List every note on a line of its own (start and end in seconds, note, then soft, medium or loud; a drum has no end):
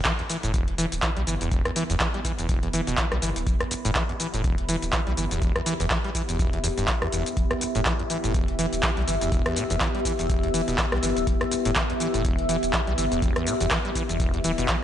0.00 14.83 B3 medium
0.00 14.83 G4 medium
0.00 7.71 B5 medium
0.05 0.13 E3 loud
0.05 kick loud
0.05 clap loud
0.05 closed hi-hat medium
0.05 shaker soft
0.19 0.23 E2 medium
0.19 closed hi-hat soft
0.26 0.37 E3 medium
0.26 14.83 E5 medium
0.26 open hi-hat medium
0.26 shaker medium
0.43 0.86 E1 medium
0.43 0.52 A2 medium
0.43 closed hi-hat medium
0.43 shaker soft
0.54 0.65 E1 loud
0.54 kick loud
0.54 closed hi-hat medium
0.54 shaker soft
0.68 closed hi-hat soft
0.78 0.86 E3 loud
0.78 open hi-hat loud
0.78 shaker medium
0.92 1.00 D1 medium
0.92 closed hi-hat medium
0.92 shaker soft
1.02 1.10 E3 loud
1.02 kick loud
1.02 clap loud
1.02 closed hi-hat medium
1.02 shaker soft
1.17 1.24 B1 medium
1.17 1.22 G3 medium
1.17 closed hi-hat soft
1.27 1.37 G1 medium
1.27 1.35 E3 medium
1.27 open hi-hat medium
1.27 shaker medium
1.41 1.48 D1 medium
1.41 1.50 E2 medium
1.41 closed hi-hat medium
1.41 shaker soft
1.51 1.61 E1 loud
1.51 1.63 E1 loud
1.51 kick loud
1.51 closed hi-hat medium
1.51 shaker soft
1.65 1.71 E2 medium
1.65 cross-stick medium
1.65 closed hi-hat soft
1.76 1.84 E3 loud
1.76 open hi-hat loud
1.76 shaker medium
1.90 1.97 E1 medium
1.90 1.96 E2 loud
1.90 closed hi-hat medium
1.90 shaker soft
2.00 2.08 E3 loud
2.00 kick loud
2.00 clap loud
2.00 closed hi-hat medium
2.00 shaker soft
2.14 2.20 G3 medium
2.14 closed hi-hat soft
2.25 2.32 E3 medium
2.25 kick medium
2.25 open hi-hat loud
2.25 shaker medium
2.39 2.81 E1 medium
2.39 2.47 E2 medium
2.39 closed hi-hat medium
2.39 shaker soft
2.49 2.61 E1 loud
2.49 kick loud
2.49 closed hi-hat medium
2.49 shaker soft
2.63 2.69 E2 medium
2.63 closed hi-hat soft
2.73 2.81 E3 loud
2.73 open hi-hat loud
2.73 shaker medium
2.87 2.95 D1 medium
2.87 2.96 B2 medium
2.87 closed hi-hat medium
2.87 shaker soft
2.97 3.06 E3 loud
2.97 kick loud
2.97 clap loud
2.97 closed hi-hat medium
2.97 shaker soft
3.12 3.19 B1 medium
3.12 3.18 G3 medium
3.12 cross-stick medium
3.12 closed hi-hat soft
3.22 3.32 G1 medium
3.22 3.30 E3 medium
3.22 open hi-hat loud
3.22 shaker medium
3.36 3.44 D1 medium
3.36 closed hi-hat medium
3.36 shaker soft
3.47 3.56 E1 loud
3.47 kick loud
3.47 closed hi-hat medium
3.47 shaker soft
3.61 3.64 E2 medium
3.61 cross-stick medium
3.61 closed hi-hat soft
3.71 3.76 E1 medium
3.71 open hi-hat loud
3.71 shaker medium
3.85 3.92 E1 medium
3.85 3.91 A2 loud
3.85 closed hi-hat medium
3.85 shaker soft
3.95 4.03 E3 loud
3.95 kick loud
3.95 clap loud
3.95 closed hi-hat medium
3.95 shaker soft
4.09 4.13 E2 medium
4.09 closed hi-hat soft
4.20 4.27 E3 medium
4.20 open hi-hat loud
4.20 shaker medium
4.34 4.76 E1 medium
4.34 4.42 A2 medium
4.34 closed hi-hat medium
4.34 shaker soft
4.44 4.56 E1 loud
4.44 kick loud
4.44 closed hi-hat medium
4.44 shaker soft
4.58 closed hi-hat soft
4.69 4.76 E3 loud
4.69 open hi-hat loud
4.69 shaker medium
4.82 4.90 D1 medium
4.82 closed hi-hat medium
4.82 shaker soft
4.92 5.01 E3 loud
4.92 kick loud
4.92 clap loud
4.92 closed hi-hat soft
4.92 shaker soft
5.07 5.14 B1 medium
5.07 5.13 G3 medium
5.07 closed hi-hat soft
5.17 5.27 G1 medium
5.17 5.25 E3 medium
5.17 open hi-hat loud
5.17 shaker medium
5.31 5.39 D1 medium
5.31 5.40 E2 medium
5.31 closed hi-hat medium
5.31 shaker soft
5.42 5.52 E1 loud
5.42 5.53 E1 loud
5.42 kick loud
5.42 closed hi-hat soft
5.42 shaker soft
5.56 5.61 E2 medium
5.56 cross-stick medium
5.56 closed hi-hat soft
5.66 5.74 E3 loud
5.66 open hi-hat loud
5.66 shaker medium
5.80 5.87 E1 loud
5.80 5.86 E2 loud
5.80 closed hi-hat medium
5.80 shaker soft
5.90 5.98 E3 loud
5.90 kick loud
5.90 clap loud
5.90 closed hi-hat soft
5.90 shaker soft
6.04 6.10 G3 medium
6.04 closed hi-hat soft
6.15 6.23 E3 medium
6.15 kick medium
6.15 open hi-hat loud
6.15 shaker medium
6.29 6.71 E1 medium
6.29 6.37 E2 medium
6.29 closed hi-hat medium
6.29 shaker soft
6.39 6.51 E1 loud
6.39 kick loud
6.39 closed hi-hat medium
6.39 shaker soft
6.53 6.59 E2 medium
6.53 closed hi-hat soft
6.64 6.68 E2 loud
6.64 open hi-hat loud
6.64 shaker medium
6.78 6.85 D1 medium
6.78 6.86 G2 medium
6.78 closed hi-hat medium
6.78 shaker soft
6.88 6.93 D3 medium
6.88 kick loud
6.88 clap loud
6.88 closed hi-hat soft
6.88 shaker soft
7.02 7.08 E2 loud
7.02 cross-stick medium
7.02 closed hi-hat soft
7.12 7.22 E1 loud
7.12 7.24 E2 medium
7.12 open hi-hat medium
7.12 shaker medium
7.26 closed hi-hat medium
7.26 shaker soft
7.37 7.47 E1 loud
7.37 kick loud
7.37 closed hi-hat medium
7.37 shaker soft
7.51 7.54 E2 medium
7.51 cross-stick medium
7.51 closed hi-hat soft
7.61 7.66 E1 medium
7.61 open hi-hat loud
7.61 shaker medium
7.68 14.83 E6 medium
7.75 7.83 E1 loud
7.75 7.81 A2 loud
7.75 closed hi-hat medium
7.75 shaker soft
7.85 7.93 E3 loud
7.85 kick loud
7.85 clap loud
7.85 closed hi-hat soft
7.85 shaker soft
7.99 8.03 E2 medium
7.99 closed hi-hat soft
8.10 8.18 E3 medium
8.10 open hi-hat medium
8.10 shaker medium
8.24 8.66 E1 medium
8.24 8.33 A2 medium
8.24 closed hi-hat medium
8.24 shaker soft
8.34 8.46 E1 loud
8.34 kick loud
8.34 closed hi-hat medium
8.34 shaker soft
8.48 closed hi-hat soft
8.59 8.66 E3 loud
8.59 open hi-hat loud
8.59 shaker medium
8.73 8.80 D1 medium
8.73 closed hi-hat medium
8.73 shaker soft
8.83 8.91 E3 loud
8.83 kick loud
8.83 clap loud
8.83 closed hi-hat soft
8.83 shaker soft
8.97 9.05 B1 medium
8.97 9.03 G3 medium
8.97 closed hi-hat soft
9.08 9.17 G1 medium
9.08 9.15 E3 medium
9.08 open hi-hat medium
9.08 shaker medium
9.21 9.29 D1 medium
9.21 9.30 E2 medium
9.21 closed hi-hat medium
9.21 shaker soft
9.32 9.42 E1 loud
9.32 9.43 E1 loud
9.32 kick loud
9.32 closed hi-hat medium
9.32 shaker soft
9.46 9.58 E2 medium
9.46 cross-stick medium
9.46 closed hi-hat soft
9.56 9.64 B2 medium
9.56 open hi-hat loud
9.56 shaker medium
9.70 9.78 E1 loud
9.70 9.76 E2 loud
9.70 closed hi-hat medium
9.70 shaker soft
9.80 9.88 E3 loud
9.80 kick loud
9.80 clap loud
9.80 closed hi-hat medium
9.80 shaker soft
9.95 10.00 G3 medium
9.95 closed hi-hat soft
10.05 10.13 E3 medium
10.05 kick medium
10.05 open hi-hat medium
10.05 shaker medium
10.19 10.61 E1 medium
10.19 10.28 E2 medium
10.19 closed hi-hat medium
10.19 shaker soft
10.29 10.41 E1 loud
10.29 kick loud
10.29 closed hi-hat medium
10.29 shaker soft
10.43 10.49 E2 medium
10.43 closed hi-hat soft
10.54 10.62 E3 loud
10.54 open hi-hat loud
10.54 shaker medium
10.68 10.75 D1 medium
10.68 10.77 B2 medium
10.68 closed hi-hat medium
10.68 shaker soft
10.78 10.86 E3 loud
10.78 kick loud
10.78 clap loud
10.78 closed hi-hat medium
10.78 shaker soft
10.92 11.00 B1 medium
10.92 10.98 G3 medium
10.92 cross-stick medium
10.92 closed hi-hat soft
11.03 11.13 G1 medium
11.03 11.10 E3 medium
11.03 open hi-hat medium
11.03 shaker medium
11.17 11.24 D1 medium
11.17 closed hi-hat medium
11.17 shaker soft
11.27 11.37 E1 loud
11.27 kick loud
11.27 closed hi-hat medium
11.27 shaker soft
11.41 11.44 E2 medium
11.41 cross-stick medium
11.41 closed hi-hat soft
11.51 11.56 E1 medium
11.51 open hi-hat loud
11.51 shaker medium
11.65 11.73 E1 loud
11.65 11.71 A2 loud
11.65 closed hi-hat medium
11.65 shaker soft
11.75 11.84 E3 loud
11.75 kick loud
11.75 clap loud
11.75 closed hi-hat medium
11.75 shaker soft
11.90 11.93 E2 medium
11.90 closed hi-hat soft
12.00 12.08 E3 medium
12.00 open hi-hat medium
12.00 shaker medium
12.14 12.57 E1 medium
12.14 12.23 A2 medium
12.14 closed hi-hat medium
12.14 shaker soft
12.25 12.36 E1 loud
12.25 kick loud
12.25 closed hi-hat medium
12.25 shaker soft
12.39 closed hi-hat soft
12.49 12.57 E3 loud
12.49 open hi-hat loud
12.49 shaker medium
12.63 12.70 D1 medium
12.63 closed hi-hat medium
12.63 shaker soft
12.73 12.81 E3 loud
12.73 kick loud
12.73 clap loud
12.73 closed hi-hat medium
12.73 shaker soft
12.87 12.95 B1 medium
12.87 12.93 G3 medium
12.87 closed hi-hat soft
12.98 13.08 G1 medium
12.98 13.05 E3 medium
12.98 open hi-hat medium
12.98 shaker medium
13.12 13.19 D1 medium
13.12 13.20 E2 medium
13.12 closed hi-hat medium
13.12 shaker soft
13.22 13.32 E1 loud
13.22 13.34 E1 loud
13.22 kick loud
13.22 closed hi-hat medium
13.22 shaker soft
13.36 13.48 E2 medium
13.36 cross-stick medium
13.36 closed hi-hat soft
13.47 13.54 B2 medium
13.47 open hi-hat loud
13.47 shaker medium
13.61 13.68 E1 medium
13.61 13.66 E2 loud
13.61 closed hi-hat medium
13.61 shaker soft
13.71 13.79 E3 loud
13.71 kick loud
13.71 cross-stick medium
13.71 clap loud
13.71 closed hi-hat medium
13.71 shaker soft
13.85 13.91 G3 medium
13.85 closed hi-hat soft
13.95 14.03 E3 medium
13.95 kick medium
13.95 open hi-hat medium
13.95 shaker medium
14.09 14.44 E1 medium
14.09 14.18 E2 medium
14.09 closed hi-hat medium
14.09 shaker soft
14.20 14.31 E1 loud
14.20 kick loud
14.20 closed hi-hat medium
14.20 shaker soft
14.34 14.39 E2 medium
14.34 closed hi-hat soft
14.44 14.54 D1 medium
14.44 14.52 E3 loud
14.44 open hi-hat loud
14.44 shaker medium
14.58 14.66 E1 medium
14.58 14.67 B2 medium
14.58 closed hi-hat medium
14.58 shaker soft
14.68 14.76 E3 loud
14.68 kick loud
14.68 clap loud
14.68 closed hi-hat medium
14.68 shaker soft